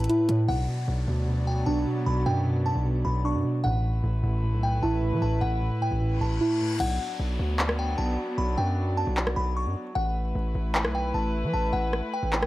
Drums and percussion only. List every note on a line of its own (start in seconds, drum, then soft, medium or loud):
0.04 closed hi-hat medium
0.09 closed hi-hat medium
0.29 closed hi-hat medium
6.80 crash medium
7.59 clap loud
7.69 cross-stick loud
9.17 clap loud
9.27 cross-stick loud
10.75 clap loud
10.85 cross-stick loud
11.93 cross-stick medium
12.33 clap loud
12.42 cross-stick loud